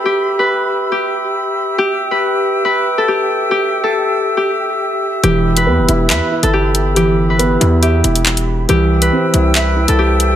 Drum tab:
HH |----------------|----------------|----------------|x--x--x-x--x--x-|
CP |----------------|----------------|----------------|--------x-------|

HH |x---x-x-x-xx-x--|x--x--x-x--x--x-|
CP |------------x---|--------x-------|